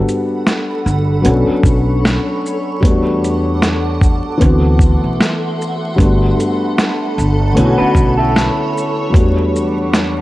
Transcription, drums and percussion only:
0.09 closed hi-hat soft
0.09 shaker soft
0.47 snare loud
0.47 closed hi-hat medium
0.87 shaker soft
1.25 closed hi-hat medium
1.63 kick medium
1.63 shaker soft
2.05 snare loud
2.05 closed hi-hat medium
2.46 shaker soft
2.83 kick loud
2.83 closed hi-hat medium
3.24 closed hi-hat soft
3.24 shaker soft
3.62 snare loud
3.62 closed hi-hat medium
4.01 kick medium
4.01 shaker soft
4.41 kick medium
4.41 closed hi-hat medium
4.79 kick medium
4.79 shaker soft
5.21 snare loud
5.21 closed hi-hat medium
5.62 shaker soft
5.98 kick loud
5.98 closed hi-hat medium
6.40 closed hi-hat soft
6.40 shaker soft
6.78 snare loud
6.78 closed hi-hat medium
7.19 shaker soft
7.57 closed hi-hat medium
7.95 kick medium
7.95 shaker soft
8.36 snare loud
8.36 closed hi-hat medium
8.78 shaker soft
9.14 kick loud
9.14 closed hi-hat medium
9.56 shaker soft
9.94 snare loud
9.94 closed hi-hat medium

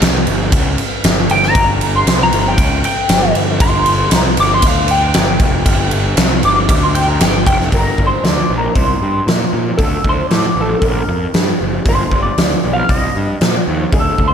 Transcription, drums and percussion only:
0.02 snare loud
0.02 ride medium
0.27 ride medium
0.52 kick loud
0.52 ride medium
0.78 ride medium
1.04 snare loud
1.04 ride loud
1.29 ride medium
1.43 snare soft
1.55 kick loud
1.55 ride medium
1.81 ride medium
2.07 snare loud
2.07 ride medium
2.33 ride medium
2.58 kick loud
2.58 ride medium
2.84 ride medium
3.09 snare loud
3.09 ride loud
3.35 ride medium
3.60 kick loud
3.60 ride loud
3.86 ride medium
4.11 snare loud
4.11 ride loud
4.37 ride medium
4.62 kick loud
4.62 ride loud
4.88 ride medium
5.14 snare loud
5.14 ride medium
5.39 kick loud
5.39 ride medium
5.66 kick loud
5.66 ride loud
5.91 ride medium
6.17 snare loud
6.17 ride medium
6.43 ride medium
6.69 kick loud
6.69 ride loud
6.95 ride medium
7.21 snare loud
7.21 ride loud
7.47 kick loud
7.47 ride medium
7.61 snare soft
7.72 kick loud
7.72 open hi-hat medium
7.98 kick medium
8.24 snare loud
8.24 open hi-hat soft
8.76 kick loud
8.76 open hi-hat soft
9.28 snare loud
9.28 open hi-hat soft
9.79 kick loud
9.79 open hi-hat soft
10.04 kick medium
10.30 snare loud
10.30 open hi-hat soft
10.82 kick loud
10.82 open hi-hat soft
11.34 snare loud
11.34 open hi-hat soft
11.86 kick loud
11.86 open hi-hat medium
12.12 kick medium
12.38 snare loud
12.38 open hi-hat medium
12.89 kick medium
12.89 open hi-hat soft
13.41 snare loud
13.41 open hi-hat medium
13.92 kick loud
13.92 open hi-hat soft
14.18 kick medium

